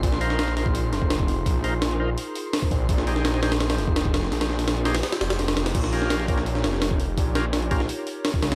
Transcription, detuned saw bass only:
\new Staff \with { instrumentName = "Detuned saw bass" } { \clef bass \time 4/4 \key ees \mixolydian \tempo 4 = 168 bes,,2~ bes,,8 f,,4. | bes,,2 r4. bes,,8 | bes,,2~ bes,,8 f,,4. | bes,,2 r8 f,,8 f,,8 f,,8 |
bes,,2~ bes,,8 f,,4. | bes,,2 r4. des,8 | }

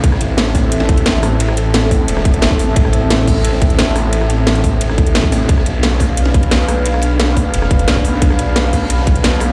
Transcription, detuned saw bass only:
\new Staff \with { instrumentName = "Detuned saw bass" } { \clef bass \time 4/4 \key a \minor \tempo 4 = 176 a,,4. a,,4. a,,8 a,,8~ | a,,8 a,,4. e,,4 a,,4 | a,,4. a,,4. a,,8 a,,8~ | a,,8 a,,4. a,,2 |
b,,4. b,,4. b,,8 b,,8~ | b,,8 b,,4. f,,4 b,,4 | b,,4. b,,4. b,,8 b,,8 | }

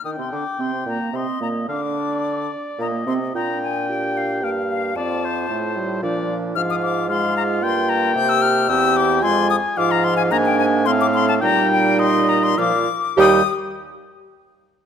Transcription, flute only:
\new Staff \with { instrumentName = "Flute" } { \time 3/4 \key ees \major \tempo 4 = 110 ees'''16 c'''16 d'''8 c'''8 bes''8 c'''8 bes''8 | d'''4. r8 bes''8 c'''8 | bes''8 aes''8 g''8 f''8 g''8 f''8 | a''4. r4. |
f'''16 ees'''16 d'''8 c'''8 bes''8 c'''8 bes''8 | g'''16 e'''16 f'''8 e'''8 d'''8 c'''8 ees'''8 | d'''16 bes''16 c'''16 aes''16 bes''16 g''16 aes''8 c'''16 d'''16 c'''16 a''16 | bes''8 g''8 c'''8 bes''16 c'''16 d'''4 |
ees'''8 r2 r8 | }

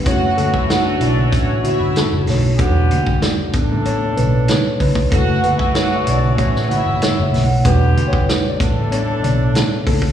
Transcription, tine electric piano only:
\new Staff \with { instrumentName = "Tine electric piano" } { \time 4/4 \key fis \phrygian \tempo 4 = 95 << { cis''8 a'8 fis'16 d'16 e'4 fis'8 a'8 cis''8 | r4 d''4 cis''8 b'8 cis''8 b'8 | a'8 b'8 \tuplet 3/2 { cis''8 e''8 d''8 } e''8 fis''8 \tuplet 3/2 { cis''8 e''8 fis''8 } | \tuplet 3/2 { b'4 cis''8~ cis''8 d''4 } cis''8 d''4 a'8 | } \\ { <a cis' e'>4. r2 r8 | <g d' fis'>4. <g b d'>2~ <g b d'>8 | <a e'>1 | <g d' fis'>8 r4. <g b d'>2 | } >> }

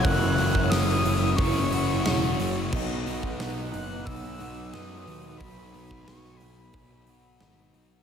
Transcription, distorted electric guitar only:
\new Staff \with { instrumentName = "Distorted electric guitar" } { \clef bass \time 4/4 \key b \major \tempo 4 = 90 <fis, cis fis>8 <cis fis>8 <fis, cis fis>4. <cis fis>8 <fis, cis fis>8 <cis fis>8 | <b, fis b>8 <fis b>8 <b, fis b>4. <fis b>8 <b, fis b>8 <fis b>8 | <b, fis b>8 <fis b>8 <b, fis b>4. <fis b>8 <b, fis b>8 <fis b>8 | }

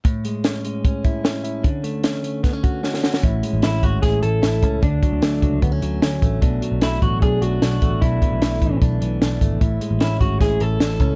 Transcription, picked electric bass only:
\new Staff \with { instrumentName = "Picked electric bass" } { \clef bass \time 4/4 \key a \major \tempo 4 = 151 r1 | r1 | a,,8 r16 a,,16 r8 gis,,8 a,,8 a,,8 a,,8 cis,8 | d,8 r16 d,16 d,8 cis,8 d,8 d,8 d,8 a,,8 |
b,,8 r16 b,,16 b,,8 a,,8 b,,8 b,,8 b,,8 a,,8 | b,,8 r16 b,,16 b,,8 a,,8 b,,8 b,,8 b,,8 gis,,8 | a,,8 r16 a,,16 r8 gis,,8 a,,8 a,,8 r8 cis,8 | }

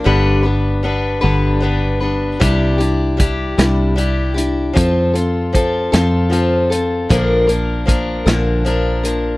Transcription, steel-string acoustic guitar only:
\new Staff \with { instrumentName = "Steel-string acoustic guitar" } { \time 6/8 \key c \major \tempo 4. = 51 <g, d g b d' b'>8 <g b d' b'>8 <g b d' b'>8 <g, d g b d' b'>8 <g b d' b'>8 <g b d' b'>8 | <c g d' e' g'>8 <d' e' g'>8 <g d' e' g'>8 <c g d' e' g'>8 <g d' e' g'>8 <d' e' g'>8 | <f c' f' a'>8 <c' f' a'>8 <f c' f' a'>8 <f c' f' a'>8 <f c' f' a'>8 <c' f' a'>8 | <bes, d f bes d' bes'>8 <f bes d' bes'>8 <f bes d' bes'>8 <bes, d f bes d' bes'>8 <f bes d' bes'>8 <f bes d' bes'>8 | }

